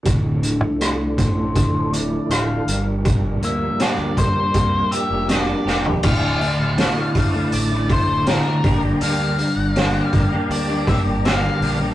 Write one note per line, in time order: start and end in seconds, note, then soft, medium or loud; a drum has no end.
0.03 0.61 D1 medium
0.03 1.93 D2 medium
0.03 2.64 E3 soft
0.03 5.98 F3 medium
0.03 5.98 D4 soft
0.03 2.64 A4 medium
0.03 kick medium
0.03 closed hi-hat medium
0.42 1.54 D3 medium
0.42 0.78 E5 medium
0.42 closed hi-hat medium
0.61 1.18 C2 medium
0.79 2.30 A3 medium
0.79 1.18 D5 medium
0.79 cross-stick medium
0.79 closed hi-hat medium
1.18 1.60 A1 medium
1.18 2.67 A2 medium
1.18 1.95 C5 medium
1.18 kick medium
1.18 closed hi-hat medium
1.55 2.67 D3 medium
1.55 kick medium
1.55 closed hi-hat medium
1.72 2.15 D1 medium
1.93 2.68 E4 medium
1.93 2.31 D5 medium
1.93 closed hi-hat medium
2.29 2.58 D1 medium
2.29 2.68 A3 medium
2.29 2.83 F5 medium
2.29 cross-stick medium
2.29 closed hi-hat medium
2.67 3.41 G1 medium
2.67 3.05 G2 medium
2.67 6.00 G4 soft
2.67 closed hi-hat medium
3.05 4.92 G2 medium
3.05 kick medium
3.05 closed hi-hat medium
3.41 3.70 D2 medium
3.41 4.53 A#3 medium
3.41 3.81 E5 medium
3.41 closed hi-hat soft
3.80 5.29 D4 medium
3.80 4.19 D5 medium
3.80 snare medium
3.80 closed hi-hat medium
3.98 4.40 D2 medium
4.17 6.04 G3 medium
4.17 4.95 C5 medium
4.17 kick medium
4.17 closed hi-hat medium
4.54 4.82 C2 medium
4.54 6.04 A#3 medium
4.54 kick medium
4.54 closed hi-hat medium
4.91 5.66 G4 medium
4.91 5.26 E5 medium
4.91 closed hi-hat soft
5.10 5.52 F1 medium
5.29 6.04 D4 medium
5.29 5.81 D5 medium
5.29 snare medium
5.29 closed hi-hat medium
5.65 5.94 F1 medium
5.65 6.04 G4 medium
5.65 snare soft
5.85 floor tom medium
6.03 6.32 D1 medium
6.03 6.76 D2 medium
6.03 6.40 A2 medium
6.03 6.40 D3 medium
6.03 6.40 A3 medium
6.03 6.40 E4 medium
6.03 11.94 D5 medium
6.03 7.53 F5 medium
6.03 8.62 A5 medium
6.03 kick loud
6.03 crash medium
6.41 muted clean electric guitar stroke soft
6.41 open hi-hat soft
6.59 6.87 D1 medium
6.77 7.34 D2 medium
6.77 7.14 A2 medium
6.77 6.97 D3 medium
6.77 6.96 A3 medium
6.77 6.95 E4 medium
6.77 snare medium
6.77 open hi-hat medium
6.96 7.15 D3 soft
6.96 7.15 A3 medium
6.96 7.16 E4 medium
7.15 7.43 D2 medium
7.15 7.71 A2 medium
7.15 7.35 D3 medium
7.15 7.34 A3 medium
7.15 7.32 E4 medium
7.15 kick medium
7.15 open hi-hat soft
7.34 7.72 D3 medium
7.34 7.71 A3 medium
7.34 7.70 E4 medium
7.52 7.94 A1 medium
7.52 7.88 D5 medium
7.52 open hi-hat medium
7.72 7.90 D3 medium
7.72 7.91 A3 medium
7.72 7.91 E4 medium
7.89 8.27 A2 medium
7.89 8.27 D3 medium
7.89 8.27 A3 medium
7.89 8.29 E4 medium
7.89 8.26 C5 medium
7.89 kick medium
7.89 open hi-hat soft
8.07 8.36 D1 medium
8.26 8.62 D2 medium
8.26 8.63 A2 medium
8.26 8.47 D3 medium
8.26 8.46 A3 medium
8.26 8.45 E4 medium
8.26 8.80 A#4 medium
8.26 snare loud
8.26 open hi-hat medium
8.46 8.63 D3 medium
8.46 8.63 A3 medium
8.46 8.62 E4 medium
8.64 8.92 G1 medium
8.64 9.00 G2 medium
8.64 9.01 D3 medium
8.64 8.85 G3 medium
8.64 8.84 A#3 medium
8.64 8.84 D4 medium
8.64 8.83 G4 loud
8.64 11.94 G5 medium
8.64 11.94 A#5 medium
8.64 kick medium
8.64 open hi-hat soft
8.84 9.01 G3 soft
8.84 9.02 A#3 medium
8.84 9.03 D4 medium
8.84 9.02 G4 medium
9.01 9.43 D2 medium
9.01 9.74 G2 medium
9.01 9.75 D3 medium
9.01 9.37 G3 medium
9.01 9.38 A#3 medium
9.01 9.39 D4 medium
9.01 9.38 G4 medium
9.01 9.56 F5 medium
9.01 open hi-hat medium
9.38 muted clean electric guitar stroke soft
9.38 open hi-hat soft
9.56 9.98 G1 medium
9.56 9.71 F#5 medium
9.71 9.87 F5 medium
9.75 10.31 G2 medium
9.75 10.32 D3 medium
9.75 9.95 G3 medium
9.75 9.95 A#3 medium
9.75 9.95 D4 medium
9.75 9.93 G4 medium
9.75 snare medium
9.75 open hi-hat medium
9.87 10.02 F#5 medium
9.94 10.12 G3 soft
9.94 10.13 A#3 medium
9.94 10.14 D4 medium
9.94 10.14 G4 medium
10.02 10.51 F5 medium
10.13 10.27 G1 medium
10.13 10.33 G3 medium
10.13 10.32 A#3 medium
10.13 10.32 D4 medium
10.13 10.30 G4 medium
10.13 kick medium
10.13 open hi-hat soft
10.32 10.70 G3 medium
10.32 10.70 A#3 medium
10.32 10.70 D4 medium
10.32 10.68 G4 medium
10.49 10.91 D2 medium
10.49 10.88 D5 medium
10.49 open hi-hat soft
10.69 10.86 G3 medium
10.69 10.87 A#3 medium
10.69 10.88 D4 medium
10.69 10.89 G4 medium
10.87 11.25 G3 medium
10.87 11.25 A#3 medium
10.87 11.26 D4 medium
10.87 11.26 G4 medium
10.87 10.99 E5 medium
10.87 kick medium
10.87 open hi-hat soft
11.05 11.47 G1 medium
11.25 11.80 G2 medium
11.25 11.81 D3 medium
11.25 11.45 G3 medium
11.25 11.44 A#3 medium
11.25 11.44 D4 medium
11.25 11.42 G4 medium
11.25 11.77 F5 medium
11.25 snare loud
11.25 open hi-hat medium
11.44 11.60 G3 medium
11.44 11.61 A#3 medium
11.44 11.63 D4 medium
11.44 11.63 G4 medium
11.60 11.89 A#1 medium
11.60 11.81 G3 medium
11.60 11.80 A#3 medium
11.60 11.81 D4 medium
11.60 11.79 G4 medium
11.60 open hi-hat soft
11.80 11.94 G3 soft
11.80 11.94 A#3 medium
11.80 11.94 D4 medium
11.80 11.94 G4 medium